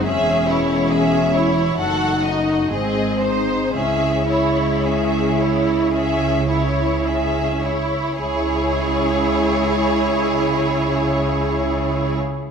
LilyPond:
<<
  \new Staff \with { instrumentName = "Violin section" } { \time 4/4 \key cis \minor \tempo 4 = 55 e''8 cis''8 e''8 cis''8 fis''8 dis''8 dis''8 bis'8 | e''8 cis''8 e''8 cis''8 e''8 cis''8 e''8 cis''8 | cis''1 | }
  \new Staff \with { instrumentName = "Violin section" } { \time 4/4 \key cis \minor gis'8 e'8 gis'8 e'8 a'8 fis'8 gis'8 bis'8 | gis'8 e'8 gis'8 e'8 gis'8 e'8 gis'8 e'8 | gis'1 | }
  \new Staff \with { instrumentName = "Viola section" } { \time 4/4 \key cis \minor cis'8 e'8 cis'8 e'8 fis'8 dis'8 bis8 dis'8 | cis'8 e'8 cis'8 e'8 cis'8 e'8 cis'8 e'8 | e'1 | }
  \new Staff \with { instrumentName = "French horn section" } { \time 4/4 \key cis \minor << { cis'2 dis'4 bis4 | e'2.~ e'8 r8 | e'1 | } \\ { gis2 a4 gis4~ | gis2.~ gis8 r8 | gis1 | } >> }
  \new Staff \with { instrumentName = "Cello section" } { \clef bass \time 4/4 \key cis \minor e,2 fis,4 gis,4 | cis2.~ cis8. r16 | cis1 | }
  \new Staff \with { instrumentName = "Double bass section" } { \clef bass \time 4/4 \key cis \minor e,,2 fis,,4 gis,,4 | cis,2.~ cis,8. r16 | cis,1 | }
>>